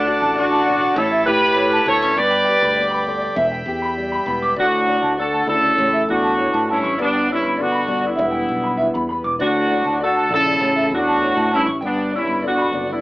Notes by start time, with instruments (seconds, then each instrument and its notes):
Already playing: fingered electric bass D2, steel-string acoustic guitar D3 A3, horn section A3 D4, transistor combo organ D5 F#5 A5
0.05 steel-string acoustic guitar F#4, clean electric guitar D5
0.20 fingered electric bass A1, clean electric guitar A5
0.35 horn section D4 F#4, clean electric guitar D5
0.51 clean electric guitar A5
0.66 steel-string acoustic guitar B2, clean electric guitar D5
0.81 clean electric guitar D5
0.95 fingered electric bass A1, steel-string acoustic guitar A2, horn section E4 A4, clean electric guitar C#5, transistor combo organ C#5 E5
1.11 clean electric guitar E5
1.25 fingered electric bass A2, steel-string acoustic guitar E4, horn section G4 B4
1.56 steel-string acoustic guitar A3, clean electric guitar C#5
1.72 clean electric guitar A5
1.86 fingered electric bass D2, steel-string acoustic guitar E3 B3, horn section A4 C#5, clean electric guitar A5
2.00 steel-string acoustic guitar C#4, clean electric guitar C#6
2.15 fingered electric bass G1, steel-string acoustic guitar G2, horn section B4 D5, transistor combo organ D5 G5 B5, muted clean electric guitar stroke
2.30 clean electric guitar G5
2.45 clean electric guitar G5
2.49 steel-string acoustic guitar G4
2.61 fingered electric bass D2, clean electric guitar B5
2.76 steel-string acoustic guitar B3, clean electric guitar D5
2.91 clean electric guitar B5
3.06 steel-string acoustic guitar D3 D4, clean electric guitar D5
3.21 clean electric guitar D5
3.36 fingered electric bass E1, steel-string acoustic guitar E2, clean electric guitar E5, transistor combo organ E5
3.52 clean electric guitar G5
3.66 fingered electric bass E2, steel-string acoustic guitar G4
3.82 clean electric guitar B5
3.97 steel-string acoustic guitar G3
4.12 clean electric guitar B5
4.26 fingered electric bass E1, steel-string acoustic guitar E3 B3, clean electric guitar B5
4.42 clean electric guitar D6
4.56 fingered electric bass D2, trombone A2, steel-string acoustic guitar A3 D4, horn section D4 F#4, clean electric guitar D5
4.72 clean electric guitar F#5
4.87 steel-string acoustic guitar D4, clean electric guitar D5
5.02 fingered electric bass D2, clean electric guitar A5
5.17 trombone D3, steel-string acoustic guitar A3, horn section F#4 A4, clean electric guitar D5
5.33 clean electric guitar A5
5.47 fingered electric bass D2, trombone C#3, horn section E4 A4, steel-string acoustic guitar F#4, clean electric guitar D5
5.63 clean electric guitar D5
5.77 fingered electric bass A1, steel-string acoustic guitar A2 A3, clean electric guitar C#5
5.93 clean electric guitar E5
6.09 fingered electric bass E2, trombone A2, horn section D4 F#4, steel-string acoustic guitar E4
6.23 clean electric guitar A5
6.38 steel-string acoustic guitar E3, clean electric guitar C#5
6.53 fingered electric bass A2, clean electric guitar A5
6.68 trombone G2, horn section C#4 E4, steel-string acoustic guitar C#4, clean electric guitar A5
6.84 fingered electric bass A1, clean electric guitar C#6
6.98 fingered electric bass G1, steel-string acoustic guitar G2 B3, trombone G2, horn section B3 D4, clean electric guitar D5
7.13 clean electric guitar G5
7.27 horn section C#4, clean electric guitar D5
7.32 trombone G2, horn section E4
7.43 fingered electric bass G1, clean electric guitar B5
7.57 steel-string acoustic guitar D3, horn section D4 F#4, clean electric guitar D5
7.61 trombone B2
7.72 clean electric guitar B5
7.87 fingered electric bass G1, steel-string acoustic guitar D4, clean electric guitar D5
8.01 horn section B3, clean electric guitar D5
8.06 trombone G2, horn section E4
8.16 fingered electric bass E1, clean electric guitar E5
8.20 steel-string acoustic guitar E2 G3
8.31 clean electric guitar G5
8.49 fingered electric bass B1, steel-string acoustic guitar B3
8.64 clean electric guitar B5
8.77 steel-string acoustic guitar E3, clean electric guitar E5
8.94 fingered electric bass E2, clean electric guitar B5
9.09 steel-string acoustic guitar B3, clean electric guitar B5
9.24 fingered electric bass E1, clean electric guitar D6
9.39 fingered electric bass D2, trombone A2, steel-string acoustic guitar D3 D4, horn section D4 F#4, clean electric guitar D5
9.55 clean electric guitar F#5
9.70 steel-string acoustic guitar D4, clean electric guitar D5
9.85 fingered electric bass D2, clean electric guitar A5
10.00 trombone D3, horn section F#4 A4, clean electric guitar D5
10.15 clean electric guitar A5
10.29 fingered electric bass A#1, horn section E4 A4, clean electric guitar D5
10.34 trombone C#3
10.46 clean electric guitar D5
10.60 fingered electric bass A1, steel-string acoustic guitar A2 A3, clean electric guitar C#5
10.76 clean electric guitar E5
10.90 fingered electric bass E2, trombone A2, horn section D4, steel-string acoustic guitar E4
10.94 horn section F#4
11.07 clean electric guitar A5
11.22 steel-string acoustic guitar E3, clean electric guitar C#5
11.36 fingered electric bass A2, clean electric guitar A5
11.51 trombone G2, horn section C#4 E4, steel-string acoustic guitar C#4, clean electric guitar A5
11.66 fingered electric bass A1, clean electric guitar C#6
11.81 fingered electric bass G1, steel-string acoustic guitar G2 B3, horn section B3 D4, clean electric guitar G5
11.85 trombone G2
11.96 clean electric guitar G5
12.11 horn section C#4, clean electric guitar D5
12.16 trombone G2, horn section E4
12.27 fingered electric bass G1, clean electric guitar B5
12.42 steel-string acoustic guitar D3, horn section D4, clean electric guitar D5
12.47 trombone B2, horn section F#4
12.58 clean electric guitar B5
12.72 fingered electric bass F#1, steel-string acoustic guitar D4, clean electric guitar D5
12.87 horn section B3, clean electric guitar D5
12.92 trombone G2, horn section E4